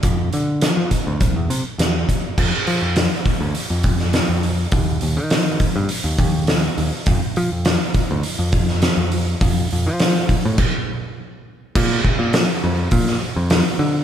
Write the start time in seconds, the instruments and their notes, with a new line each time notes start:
0.03 picked electric bass F2, kick, closed hi-hat
0.33 picked electric bass D3, closed hi-hat
0.62 snare, closed hi-hat
0.77 picked electric bass F3
0.91 kick, closed hi-hat
1.07 picked electric bass D2
1.21 picked electric bass C2, kick, closed hi-hat
1.36 picked electric bass E2
1.50 picked electric bass C3, closed hi-hat
1.78 picked electric bass E2, snare, closed hi-hat
2.09 kick, closed hi-hat
2.38 picked electric bass F2, kick, crash
2.67 picked electric bass F3, open hi-hat
2.82 picked electric bass F2
2.96 snare, open hi-hat
3.25 kick, open hi-hat
3.41 picked electric bass D2
3.55 open hi-hat
3.70 picked electric bass F2
3.83 kick, open hi-hat
3.99 snare
4.13 snare, open hi-hat
4.29 picked electric bass F2
4.43 open hi-hat
4.72 picked electric bass D#2, kick, open hi-hat
5.01 picked electric bass D#2, open hi-hat
5.17 picked electric bass D#3
5.30 snare, open hi-hat
5.60 kick, open hi-hat
5.76 picked electric bass G2
5.89 open hi-hat
6.04 picked electric bass D#2
6.18 picked electric bass D#2, kick, open hi-hat
6.47 snare, open hi-hat
6.78 picked electric bass D#2, open hi-hat
7.06 picked electric bass F2, kick, open hi-hat
7.36 picked electric bass F3, open hi-hat
7.52 picked electric bass F2
7.65 snare, open hi-hat
7.94 kick, open hi-hat
8.11 picked electric bass D2
8.23 open hi-hat
8.39 picked electric bass F2
8.52 kick, open hi-hat
8.68 snare
8.82 snare, open hi-hat
8.97 picked electric bass F2
9.12 open hi-hat
9.41 picked electric bass F2, kick, open hi-hat
9.71 picked electric bass F2, open hi-hat
9.86 picked electric bass F3
9.99 snare, open hi-hat
10.15 snare
10.29 kick, open hi-hat
10.45 picked electric bass A2
10.58 kick, crash
11.75 picked electric bass A#2, kick, crash
12.05 kick
12.19 picked electric bass A#2
12.33 snare, open hi-hat
12.64 picked electric bass F2
12.91 picked electric bass A#2, kick, open hi-hat
13.07 snare
13.36 picked electric bass F2
13.50 snare, open hi-hat
13.79 picked electric bass D3